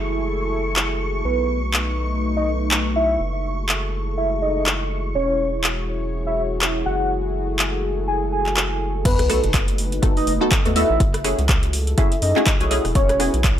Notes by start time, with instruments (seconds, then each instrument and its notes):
Already playing: analog synth bass F#1, analog synth pad E4 F#4 G#4 A4, string machine C#6
0.76 clap
1.24 analog synth bass B1, analog synth pad A3 D#4 B4, soft synth lead B4
1.74 clap
2.37 soft synth lead D#5
2.71 clap
2.96 soft synth lead E5
3.20 analog synth bass F#1, analog synth pad E4 G#4 A4
3.69 clap
4.17 soft synth lead E5
4.42 soft synth lead D#5
4.66 clap
5.15 analog synth bass E1, analog synth pad F#4 G#4 C#5, soft synth lead C#5
5.64 clap
6.26 soft synth lead E5
6.61 clap
6.86 analog synth bass F#1, analog synth pad A4, soft synth lead F#5
7.59 clap
8.08 soft synth lead G#5
8.32 soft synth lead G#5
8.46 clap
8.57 clap
9.05 analog synth bass B1, analog synth pad A3 D#4 F#4 B4, soft synth lead B4, kick, closed hi-hat, crash, sub drop
9.19 cross-stick, closed hi-hat
9.29 synth stab A3 B3 D#4 F#4 A4, cross-stick, open hi-hat
9.44 analog synth bass F#1, closed hi-hat
9.54 kick, clap, closed hi-hat
9.68 closed hi-hat
9.78 open hi-hat
9.92 closed hi-hat
10.02 synth stab A3 B3 D#4 F#4 A4, kick, closed hi-hat
10.17 soft synth lead D#5, open hi-hat
10.27 analog synth bass F#1, open hi-hat
10.41 synth stab A3 B3 D#4 F#4 A4
10.51 kick, clap, closed hi-hat
10.65 analog synth bass D#2, synth stab A3 B3 D#4 F#4 A4, closed hi-hat
10.75 synth stab A3 B3 D#4 F#4 A4, soft synth lead E5, open hi-hat
10.90 analog synth bass A1
11.00 analog synth bass F#1, analog synth pad E4 G#4 A4, kick, closed hi-hat
11.14 cross-stick, closed hi-hat
11.24 synth stab A3 C#4 E4 F#4 G#4, cross-stick, open hi-hat
11.39 analog synth bass C#2, closed hi-hat
11.49 kick, clap, closed hi-hat
11.63 closed hi-hat
11.73 open hi-hat
11.87 closed hi-hat
11.98 synth stab A3 C#4 E4 F#4 G#4, soft synth lead E5, kick, closed hi-hat
12.12 closed hi-hat
12.22 analog synth bass F#2, soft synth lead D#5, open hi-hat
12.36 synth stab A3 C#4 E4 F#4 G#4, clap
12.46 kick, clap, closed hi-hat
12.60 analog synth bass B1, synth stab A3 C#4 E4 F#4 G#4, closed hi-hat
12.71 synth stab A3 C#4 E4 F#4 G#4, open hi-hat
12.85 analog synth bass E1, cross-stick, open hi-hat
12.95 analog synth bass E1, soft synth lead C#5, analog synth pad C#5, kick, closed hi-hat
13.09 cross-stick, closed hi-hat
13.20 synth stab B3 C#4 E4 F#4 G#4, cross-stick, open hi-hat
13.34 analog synth bass B1, closed hi-hat
13.44 kick, clap, closed hi-hat